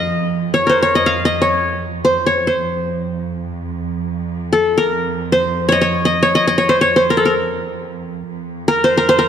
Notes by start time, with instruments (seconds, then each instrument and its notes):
Already playing: cello section F2, qanun D#5 F5
0.54 qanun C#5
0.67 qanun A#4 C5
0.82 qanun C#5
0.95 qanun D#5
1.06 qanun F5
1.25 qanun D#5
1.42 qanun C#5
2.05 qanun C5
2.26 qanun C#5
2.47 qanun C5
2.59 cello section F2
4.53 qanun A4
4.78 qanun A#4
5.32 qanun C5
5.69 qanun C#5 D#5
5.81 qanun C#5
6.05 qanun D#5
6.23 qanun C#5
6.35 qanun D#5
6.47 qanun D#5
6.58 qanun C#5
6.69 qanun C5
6.81 qanun C#5
6.96 qanun C5
7.10 qanun A#4
7.17 qanun A4
7.25 qanun A#4
8.27 cello section F2
8.68 qanun A#4
8.84 qanun C5
8.97 qanun A#4
9.09 qanun C5
9.19 qanun A#4